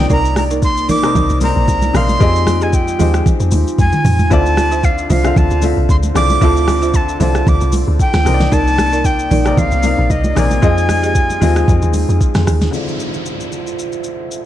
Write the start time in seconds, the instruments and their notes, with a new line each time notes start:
Already playing: grand piano C3 C4 D#4 A#4 D5, glass harmonica A#3 D#4 D5
0.10 log drum bass C2, marimba D#4 A#4 D5, flute A#5, kick, shaker
0.25 shaker
0.36 flute A#5, cross-stick, open hi-hat, high conga, shaker
0.51 marimba D#4 A#4 D5, shaker
0.62 flute C6, kick, shaker
0.77 shaker
0.89 log drum bass A#1, marimba D#4 A#4 D5, flute D6, open hi-hat, high conga, low conga, shaker
1.03 grand piano C3 C4 D#4 A#4 C5, cross-stick, shaker
1.15 log drum bass C2, kick, low conga, shaker
1.29 log drum bass C2, shaker
1.41 grand piano C3 C4 D#4 A#4 C5, flute A#5, open hi-hat, high conga, shaker
1.56 log drum bass A#1
1.68 log drum bass C2, kick, shaker
1.82 high conga, shaker
1.93 log drum bass A#1, grand piano C3 C4 D#4 A#4 F5, flute C6, cross-stick, open hi-hat, low conga, shaker
2.09 high conga, shaker
2.20 log drum bass F2, grand piano F3 C4 G4 G#4 D#5, glass harmonica G#3 F4, marimba G4 G#4 D#5, kick, shaker
2.36 shaker
2.47 cross-stick, open hi-hat, high conga, shaker
2.61 marimba G4 G#4 D#5, flute G#5, shaker
2.73 flute G5, kick, shaker
2.88 shaker
2.99 log drum bass D#2, grand piano F3 C4 G4 G#4 C5, marimba G4 G#4 D#5, open hi-hat, high conga, low conga, shaker
3.14 cross-stick, shaker
3.26 kick, low conga, shaker
3.40 log drum bass F2, shaker
3.51 log drum bass D#2, open hi-hat, high conga, shaker
3.67 shaker
3.78 log drum bass F2, flute G#5, kick, high tom, shaker
3.92 mid tom, high conga, shaker
4.05 log drum bass F2, mid tom, open hi-hat, low conga, shaker
4.19 floor tom, high conga, shaker
4.30 log drum bass D2, grand piano D3 C4 E4 F4 D5, glass harmonica D4 F4 C5, marimba F4 C5 E5, flute A5, kick, shaker
4.46 shaker
4.57 cross-stick, open hi-hat, high conga, shaker
4.72 marimba F4 C5 E5, shaker
4.83 flute F5, kick, shaker
4.98 shaker
5.10 log drum bass C2, marimba F4 C5 E5, flute F5, open hi-hat, high conga, low conga, shaker
5.23 grand piano D3 C4 F4 E5 F5, cross-stick, shaker
5.36 log drum bass D2, flute A5, kick, low conga, shaker
5.50 log drum bass D2, shaker
5.62 grand piano D3 C4 E4 F4 E5, open hi-hat, high conga, shaker
5.77 log drum bass C2
5.89 log drum bass D2, flute C6, kick, shaker
6.03 high conga, shaker
6.14 log drum bass C2, grand piano D3 C4 E4 F4 D5, flute D6, cross-stick, open hi-hat, low conga, shaker
6.30 high conga, shaker
6.41 log drum bass D2, grand piano D3 C4 E4 F4 A4, marimba F4 C5 E5, kick, shaker
6.57 shaker
6.68 cross-stick, open hi-hat, high conga, shaker
6.82 marimba F4 C5 E5, shaker
6.94 flute A5, kick, shaker
7.09 shaker
7.20 log drum bass C2, grand piano D3 C4 E4 F4 D5, marimba F4 C5 E5, flute A5, open hi-hat, high conga, low conga, shaker
7.35 cross-stick, shaker
7.47 log drum bass D2, flute D6, kick, low conga, shaker
7.61 log drum bass C2, shaker
7.72 open hi-hat, high conga, shaker
7.88 log drum bass D2
8.00 flute G5, kick, shaker
8.13 log drum bass D2, cross-stick, snare, high conga, shaker
8.25 log drum bass C2, grand piano C3 C4 D#4 A#4 C5, glass harmonica A#3 D#4 D5, cross-stick, open hi-hat, low conga, shaker
8.34 grand piano D5
8.40 snare, high conga, shaker
8.52 log drum bass C2, marimba D#4 A#4 D5, flute A5, kick, shaker
8.67 shaker
8.78 cross-stick, open hi-hat, high conga, shaker
8.92 marimba D#4 A#4 D5, shaker
9.05 flute G5, kick, shaker
9.19 shaker
9.31 log drum bass A#1, marimba D#4 A#4 D5, open hi-hat, high conga, low conga, shaker
9.44 grand piano C3 C4 D#4 A#4 D5, cross-stick, shaker
9.57 log drum bass C2, flute F5, kick, low conga, shaker
9.71 log drum bass C2, shaker
9.83 grand piano C3 C4 D#4 A#4 F5, open hi-hat, high conga, shaker
9.98 log drum bass A#1
10.10 log drum bass C2, flute D#5, kick, shaker
10.24 high conga, shaker
10.35 log drum bass A#1, grand piano C3 C4 D#4 A#4 D5, flute G#5, cross-stick, open hi-hat, low conga, shaker
10.51 high conga, shaker
10.62 log drum bass F2, grand piano F3 C4 F4 G#4 D#5, glass harmonica G#3 G#4, marimba F4 G#4 D#5, kick, shaker
10.78 shaker
10.89 cross-stick, open hi-hat, high conga, shaker
11.03 marimba G4 G#4 D#5, shaker
11.15 kick, shaker
11.30 high conga, shaker
11.41 log drum bass D#2, grand piano F3 C4 F4 G#4 D#5, marimba G4 G#4 D#5, open hi-hat, high conga, low conga, shaker
11.56 cross-stick, shaker
11.68 log drum bass F2, kick, low conga, shaker
11.82 log drum bass D#2, shaker
11.94 open hi-hat, high conga, shaker
12.09 log drum bass F2, shaker
12.21 kick, shaker
12.35 log drum bass F2, cross-stick, snare, high conga, shaker
12.47 log drum bass D#2, cross-stick, open hi-hat, low conga, shaker
12.61 snare, high conga, shaker
12.71 grand piano D3 C4 E4, glass harmonica F4 C5 E5, downlifter, shaker
12.75 grand piano F4 D5
12.88 shaker
13.00 shaker
13.14 shaker
13.26 shaker
13.40 shaker
13.52 shaker
13.67 shaker
13.79 shaker
13.92 shaker
14.04 shaker
14.31 shaker